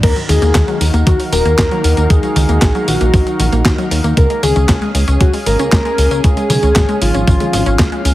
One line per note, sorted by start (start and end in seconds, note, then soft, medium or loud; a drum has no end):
0.03 0.13 D#2 loud
0.03 0.16 D#3 loud
0.03 4.13 D#3 medium
0.03 4.13 D#4 medium
0.03 4.13 F#4 medium
0.03 4.13 A#4 medium
0.03 0.15 A#4 loud
0.03 4.13 F5 medium
0.03 kick loud
0.03 closed hi-hat loud
0.03 tambourine soft
0.03 crash loud
0.16 0.22 F#3 medium
0.16 closed hi-hat soft
0.16 tambourine soft
0.29 0.39 D#2 medium
0.29 0.39 D#3 loud
0.29 0.77 G#4 loud
0.29 open hi-hat loud
0.29 high tom medium
0.29 tambourine medium
0.42 0.52 D#2 medium
0.42 0.48 A#3 loud
0.42 closed hi-hat soft
0.42 high tom medium
0.42 tambourine soft
0.55 0.65 D#2 loud
0.55 0.61 D#3 medium
0.55 kick loud
0.55 snare loud
0.55 clap loud
0.55 closed hi-hat loud
0.55 tambourine soft
0.68 0.78 F#3 loud
0.68 closed hi-hat soft
0.68 tambourine soft
0.81 0.91 D#2 loud
0.81 0.87 D#3 medium
0.81 open hi-hat loud
0.81 tambourine medium
0.94 1.04 D#2 medium
0.94 1.06 A#3 loud
0.94 closed hi-hat soft
0.94 tambourine soft
1.07 1.17 D#2 loud
1.07 1.19 D#3 loud
1.07 1.18 F#4 loud
1.07 kick loud
1.07 closed hi-hat loud
1.07 tambourine soft
1.20 1.26 F#3 medium
1.20 open hi-hat medium
1.20 tambourine soft
1.32 1.42 D#1 medium
1.32 1.43 D#3 loud
1.32 2.12 A#4 loud
1.32 open hi-hat loud
1.32 tambourine medium
1.45 1.55 D#2 medium
1.45 1.51 A#3 loud
1.45 closed hi-hat soft
1.45 tambourine soft
1.58 1.68 D#2 loud
1.58 1.64 D#3 medium
1.58 kick loud
1.58 snare loud
1.58 clap loud
1.58 closed hi-hat loud
1.58 tambourine soft
1.71 1.81 F#3 loud
1.71 closed hi-hat soft
1.71 tambourine soft
1.84 1.94 D#2 loud
1.84 1.90 D#3 medium
1.84 open hi-hat loud
1.84 tambourine medium
1.97 2.07 D#2 medium
1.97 2.10 A#3 loud
1.97 closed hi-hat soft
1.97 tambourine soft
2.10 2.20 D#2 loud
2.10 2.23 D#3 loud
2.10 2.87 G#4 loud
2.10 kick loud
2.10 closed hi-hat medium
2.10 tambourine soft
2.23 2.29 F#3 medium
2.23 closed hi-hat soft
2.23 tambourine soft
2.36 2.46 C#2 medium
2.36 2.46 D#3 loud
2.36 open hi-hat loud
2.36 high tom medium
2.36 tambourine medium
2.49 2.59 D#2 medium
2.49 2.55 A#3 loud
2.49 closed hi-hat soft
2.49 tambourine soft
2.62 2.72 A#1 loud
2.62 2.68 D#3 medium
2.62 kick loud
2.62 snare loud
2.62 clap loud
2.62 closed hi-hat medium
2.62 tambourine soft
2.75 2.85 F#3 loud
2.75 closed hi-hat soft
2.75 tambourine soft
2.88 2.98 A#1 loud
2.88 2.94 D#3 medium
2.88 3.87 F#4 loud
2.88 open hi-hat loud
2.88 tambourine medium
3.01 3.11 A#1 medium
3.01 3.13 A#3 loud
3.01 closed hi-hat soft
3.01 tambourine soft
3.14 3.24 A#1 loud
3.14 3.26 D#3 loud
3.14 kick loud
3.14 open hi-hat medium
3.14 tambourine soft
3.27 3.33 F#3 medium
3.27 closed hi-hat soft
3.27 tambourine soft
3.40 3.49 A#1 loud
3.40 3.50 D#3 loud
3.40 open hi-hat loud
3.40 tambourine medium
3.52 3.62 A#1 medium
3.52 3.58 A#3 loud
3.52 closed hi-hat soft
3.52 tambourine soft
3.65 3.75 D#2 loud
3.65 3.71 D#3 medium
3.65 kick loud
3.65 snare loud
3.65 clap loud
3.65 closed hi-hat loud
3.65 tambourine soft
3.78 3.88 F#3 loud
3.78 closed hi-hat soft
3.78 tambourine soft
3.91 4.01 D#2 medium
3.91 3.97 D#3 medium
3.91 open hi-hat loud
3.91 tambourine medium
4.04 4.14 D#2 medium
4.04 4.17 A#3 loud
4.04 closed hi-hat soft
4.04 tambourine soft
4.17 4.27 C#2 loud
4.17 4.29 C#3 loud
4.17 8.14 C#4 medium
4.17 8.14 G#4 medium
4.17 4.41 A#4 loud
4.17 8.14 F5 medium
4.17 kick loud
4.17 closed hi-hat medium
4.17 tambourine soft
4.30 4.36 G#3 medium
4.30 closed hi-hat soft
4.30 tambourine soft
4.43 4.53 C#2 medium
4.43 4.53 C#3 loud
4.43 4.91 G#4 loud
4.43 open hi-hat loud
4.43 high tom medium
4.43 tambourine medium
4.56 4.66 C#2 medium
4.56 4.62 C#4 loud
4.56 closed hi-hat soft
4.56 high tom medium
4.56 tambourine soft
4.69 4.79 C#2 loud
4.69 4.75 C#3 medium
4.69 kick loud
4.69 snare loud
4.69 clap loud
4.69 closed hi-hat medium
4.69 tambourine soft
4.82 4.92 G#3 loud
4.82 closed hi-hat soft
4.82 tambourine soft
4.95 5.04 C#2 medium
4.95 5.01 C#3 medium
4.95 open hi-hat loud
4.95 tambourine medium
5.08 5.17 C#2 medium
5.08 5.20 C#4 loud
5.08 closed hi-hat soft
5.08 tambourine soft
5.21 5.30 C#2 loud
5.21 5.33 C#3 loud
5.21 5.32 F#4 loud
5.21 kick loud
5.21 closed hi-hat loud
5.21 tambourine soft
5.34 5.40 G#3 medium
5.34 open hi-hat medium
5.34 tambourine soft
5.46 5.56 G#1 loud
5.46 5.56 C#3 loud
5.46 6.20 A#4 loud
5.46 open hi-hat loud
5.46 tambourine medium
5.59 5.69 C#2 medium
5.59 5.65 C#4 loud
5.59 closed hi-hat soft
5.59 tambourine soft
5.72 5.82 C#2 loud
5.72 5.78 C#3 medium
5.72 kick loud
5.72 snare loud
5.72 clap loud
5.72 closed hi-hat medium
5.72 tambourine soft
5.85 5.95 G#3 loud
5.85 closed hi-hat soft
5.85 tambourine soft
5.98 6.08 C#2 medium
5.98 6.04 C#3 medium
5.98 open hi-hat loud
5.98 tambourine medium
6.11 6.21 C#2 medium
6.11 6.23 C#4 loud
6.11 closed hi-hat soft
6.11 tambourine soft
6.24 6.34 C#2 loud
6.24 6.36 C#3 loud
6.24 6.98 G#4 loud
6.24 kick loud
6.24 closed hi-hat medium
6.24 tambourine soft
6.37 6.43 G#3 medium
6.37 closed hi-hat soft
6.37 tambourine soft
6.50 6.60 B1 medium
6.50 6.60 C#3 loud
6.50 open hi-hat loud
6.50 high tom medium
6.50 tambourine medium
6.63 6.73 C#2 medium
6.63 6.69 C#4 loud
6.63 closed hi-hat soft
6.63 tambourine soft
6.76 6.86 G#1 loud
6.76 6.82 C#3 medium
6.76 kick loud
6.76 snare loud
6.76 clap loud
6.76 closed hi-hat medium
6.76 tambourine soft
6.89 6.99 G#3 loud
6.89 closed hi-hat soft
6.89 tambourine soft
7.02 7.11 G#1 loud
7.02 7.08 C#3 medium
7.02 8.01 F4 loud
7.02 open hi-hat loud
7.02 tambourine medium
7.14 7.24 G#1 medium
7.14 7.27 C#4 loud
7.14 closed hi-hat soft
7.14 tambourine soft
7.27 7.37 G#1 loud
7.27 7.40 C#3 loud
7.27 kick loud
7.27 open hi-hat medium
7.27 tambourine soft
7.40 7.46 G#3 medium
7.40 closed hi-hat soft
7.40 high tom medium
7.40 tambourine soft
7.53 7.63 G#1 loud
7.53 7.63 C#3 loud
7.53 open hi-hat loud
7.53 tambourine medium
7.66 7.76 G#1 medium
7.66 7.72 C#4 loud
7.66 closed hi-hat soft
7.66 tambourine soft
7.79 7.89 C#2 loud
7.79 7.85 C#3 medium
7.79 kick loud
7.79 snare loud
7.79 clap loud
7.79 closed hi-hat medium
7.79 tambourine soft
7.92 8.02 G#3 loud
7.92 closed hi-hat soft
7.92 tambourine soft
8.05 8.14 C#2 medium
8.05 8.11 C#3 medium
8.05 open hi-hat loud
8.05 tambourine medium